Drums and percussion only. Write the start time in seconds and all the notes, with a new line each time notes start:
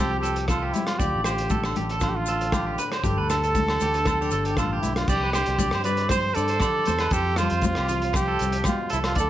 0.00 muted conga, high conga, low agogo
0.23 closed hi-hat, muted conga, maracas
0.36 closed hi-hat, maracas
0.48 kick, cross-stick, closed hi-hat, low conga, low agogo, maracas
0.73 closed hi-hat, high conga, maracas
0.87 cross-stick, closed hi-hat, low agogo
0.99 kick, closed hi-hat, muted conga, maracas
1.24 cross-stick, closed hi-hat, low agogo, maracas
1.38 closed hi-hat
1.50 kick, closed hi-hat, high conga, maracas
1.64 cross-stick, low agogo
1.76 closed hi-hat, muted conga, high conga
1.89 closed hi-hat
2.00 kick, cross-stick, closed hi-hat, muted conga, low agogo, maracas
2.26 closed hi-hat, muted conga, maracas
2.41 closed hi-hat, maracas
2.52 kick, cross-stick, closed hi-hat, high conga, low agogo, maracas
2.78 closed hi-hat, maracas
2.92 cross-stick, closed hi-hat, low agogo
3.04 kick, closed hi-hat, muted conga, maracas
3.30 cross-stick, closed hi-hat, low agogo, maracas
3.43 closed hi-hat, maracas
3.55 kick, closed hi-hat, high conga, maracas
3.68 cross-stick, low agogo
3.80 closed hi-hat, muted conga, high conga, low conga, maracas
3.94 closed hi-hat, maracas
4.05 kick, cross-stick, closed hi-hat, muted conga, high conga, low agogo, maracas
4.31 closed hi-hat, maracas
4.45 closed hi-hat, maracas
4.57 kick, cross-stick, closed hi-hat, low conga, low agogo, maracas
4.83 closed hi-hat, high conga, maracas
4.96 cross-stick, closed hi-hat, low agogo, maracas
5.08 kick, crash, muted conga, maracas
5.33 cross-stick, closed hi-hat, muted conga, low agogo, maracas
5.46 closed hi-hat
5.58 kick, closed hi-hat, high conga, maracas
5.71 cross-stick, low agogo
5.84 closed hi-hat, maracas
5.97 closed hi-hat
6.09 kick, cross-stick, closed hi-hat, muted conga, high conga, low agogo, maracas
6.34 closed hi-hat, maracas
6.48 closed hi-hat
6.60 kick, cross-stick, closed hi-hat, low agogo, maracas
6.85 closed hi-hat, muted conga, high conga, maracas
6.99 cross-stick, closed hi-hat, low agogo
7.11 kick, closed hi-hat, muted conga, maracas
7.36 cross-stick, closed hi-hat, muted conga, low conga, low agogo, maracas
7.50 closed hi-hat
7.61 kick, closed hi-hat, high conga, maracas
7.75 cross-stick, low agogo
7.88 closed hi-hat, low conga, maracas
8.02 closed hi-hat
8.13 kick, cross-stick, closed hi-hat, muted conga, low agogo, maracas
8.39 closed hi-hat, maracas
8.52 closed hi-hat
8.64 kick, cross-stick, closed hi-hat, high conga, low agogo, maracas
8.90 closed hi-hat, maracas
8.94 muted conga
9.04 cross-stick, closed hi-hat, low agogo
9.15 kick, closed hi-hat, muted conga, maracas